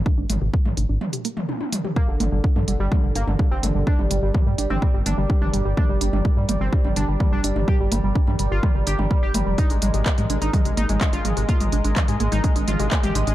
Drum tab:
HH |--x---x--xx---x-|--x---x---x---x-|--x---x---x---x-|--x---x---x---x-|
CP |----------------|----------------|----------------|----------------|
T1 |------------oo--|----------------|----------------|----------------|
T2 |--o--o--o--o--oo|--o--o--o--o--o-|-o--o--o--o--o--|o--o--o--o--o--o|
BD |o---o-----------|o---o---o---o---|o---o---o---o---|o---o---o---o---|

HH |--x---x---x---x-|xxxxxxxxxxxxxxxx|xxxxxxxxxxxxxxxx|
CP |----------------|----x-------x---|----x-------x---|
T1 |----------------|----------------|----------------|
T2 |--o--o--o--o--o-|--o--o--o--o--o-|-o--o--o--o--o--|
BD |o---o---o---o---|o---o---o---o---|o---o---o---o---|